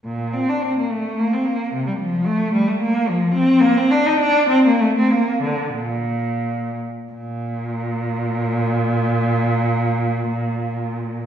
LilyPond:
\new Staff \with { instrumentName = "Cello" } { \time 3/4 \key bes \major \tempo 4 = 95 bes,8 c'16 d'16 c'16 bes16 a8 bes16 c'16 bes8 | c16 g16 f8 a8 g16 a16 bes8 f8 | c'8 bes16 c'16 d'16 ees'16 d'8 c'16 bes16 a16 c'16 | bes8 d8 bes,4. r8 |
bes,2.~ | bes,2. | }